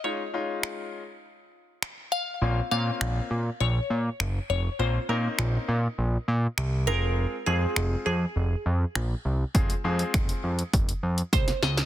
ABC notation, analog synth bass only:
X:1
M:4/4
L:1/8
Q:1/4=101
K:Fphr
V:1 name="Analog synth bass" clef=bass
z8 | B,,, B,, B,,, B,, B,,, B,, G,,, F,,, | B,,, B,, B,,, B,, B,,, B,, C,, F,,,- | F,,, F,, F,,, F,, F,,, F,, B,,, C,, |
F,,, F,, F,,, F,, F,,, F,, C,, D,, |]